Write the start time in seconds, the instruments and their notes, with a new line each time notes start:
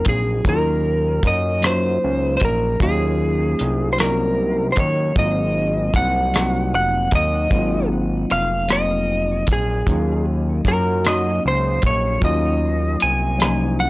Already playing: tine electric piano F#3 A#3 C4 D#4 F4 F#4
0.05 analog synth bass A#1, lead electric guitar G#4, kick, closed hi-hat
0.44 analog synth bass D#2, tine electric piano F#3 A#3 C#4 D#4, kick, closed hi-hat
0.48 tine electric piano E4, lead electric guitar A#4
0.55 tine electric piano F4
1.23 analog synth bass F#2, kick, closed hi-hat
1.27 lead electric guitar D#5
1.61 tine electric piano F#3 A#3 C#4 D#4, cross-stick, closed hi-hat
1.66 tine electric piano F4, lead electric guitar C5
2.04 analog synth bass C#2
2.37 lead electric guitar C5, closed hi-hat
2.42 analog synth bass A#1, lead electric guitar A#4, kick
2.79 analog synth bass D#2, tine electric piano F#3 A#3 C#4 D#4, lead electric guitar G#4, kick, closed hi-hat
2.84 tine electric piano F4
3.59 analog synth bass C2, closed hi-hat
3.93 lead electric guitar C5
3.98 tine electric piano F#3 A#3 C#4 D#4, lead electric guitar A#4, cross-stick, closed hi-hat
4.02 tine electric piano F4
4.09 tine electric piano F#4
4.72 lead electric guitar C5, closed hi-hat
4.77 analog synth bass D#2, lead electric guitar C#5, kick
5.14 analog synth bass G#1, tine electric piano F#3 A#3 C4, kick, closed hi-hat
5.18 tine electric piano D#4 F4, lead electric guitar D#5
5.94 analog synth bass C2, lead electric guitar F#5, kick, closed hi-hat
6.33 tine electric piano F#3 A#3 C4 D#4, cross-stick, closed hi-hat
6.38 tine electric piano F#4
6.74 analog synth bass F1, lead electric guitar F#5
7.11 analog synth bass D#2, kick, closed hi-hat
7.15 lead electric guitar D#5
7.50 analog synth bass G#1, tine electric piano F#3 A#3 C4 D#4, kick, closed hi-hat
7.55 tine electric piano F4
8.30 analog synth bass F1, lead electric guitar F5, closed hi-hat
8.68 tine electric piano F#3 A#3 C4 D#4, cross-stick, closed hi-hat
8.72 tine electric piano F4, lead electric guitar D#5
9.47 analog synth bass A#1, kick, closed hi-hat
9.53 lead electric guitar G#4
9.86 analog synth bass D#2, tine electric piano F#3 A#3 C#4 D#4, kick, closed hi-hat
9.90 tine electric piano F4
10.65 analog synth bass F#2, lead electric guitar A#4, kick, closed hi-hat
11.03 tine electric piano F#3 A#3 C#4 D#4, cross-stick, closed hi-hat
11.08 tine electric piano F#4, lead electric guitar D#5
11.45 analog synth bass C#2, lead electric guitar C5
11.82 analog synth bass A#1, kick, closed hi-hat
11.86 lead electric guitar C#5
12.20 analog synth bass D#2, tine electric piano F#3 A#3 C#4 D#4, kick, closed hi-hat
12.25 tine electric piano F4, lead electric guitar D#5
13.00 analog synth bass C2, lead electric guitar G#5, closed hi-hat
13.38 tine electric piano F#3 A#3 C#4 D#4, cross-stick, closed hi-hat
13.42 tine electric piano F3
13.80 lead electric guitar F#5